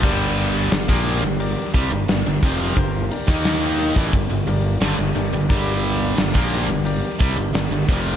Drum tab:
CC |x---------------|----------------|----------------|
HH |--o-o-o-o-o-o-o-|o-o-o-o-o-o-o-o-|o-o-o-o-o-o-o-o-|
SD |----o-------o---|----o-------o---|----o-------o---|
BD |o----o----o---o-|o--o---oo-------|o----o----o---o-|